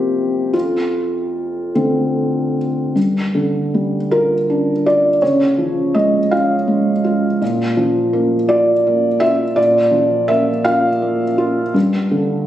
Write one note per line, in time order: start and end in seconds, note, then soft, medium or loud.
0.00 0.56 C3 medium
0.00 0.50 F3 soft
0.00 0.50 A#3 soft
0.00 0.50 C4 soft
0.00 0.54 G4 medium
0.00 0.56 A#4 medium
0.00 0.56 C5 medium
0.53 1.71 F2 soft
0.53 2.56 F4 medium
1.75 2.93 D3 soft
1.75 2.93 A3 soft
1.75 2.93 C4 soft
2.96 5.17 G2 soft
3.35 3.96 D3 soft
3.74 4.34 G3 soft
4.11 4.71 F4 soft
4.11 4.86 A#4 medium
4.50 5.08 D4 soft
4.86 5.22 F4 soft
4.86 5.22 D5 medium
5.22 7.38 C#3 medium
5.22 5.95 C#5 medium
5.58 6.17 F3 soft
5.95 6.54 G#3 soft
5.95 6.32 D#5 medium
6.31 6.91 F4 soft
6.31 7.41 F5 medium
6.67 7.26 G#3 soft
7.04 7.41 F4 soft
7.42 9.53 A#2 medium
7.77 8.35 F3 soft
8.13 8.71 A#3 soft
8.49 9.07 F4 medium
8.49 9.21 D5 medium
8.87 9.44 A#3 soft
9.20 9.78 F4 medium
9.20 9.56 E5 medium
9.56 11.70 A#2 medium
9.56 10.28 D5 medium
9.91 10.50 F3 medium
10.28 10.87 A#3 medium
10.28 10.65 E5 loud
10.65 11.24 F4 medium
10.65 11.74 F5 medium
11.02 11.60 A#3 medium
11.38 11.74 F4 medium
11.74 12.47 G2 medium
12.11 12.47 D3 medium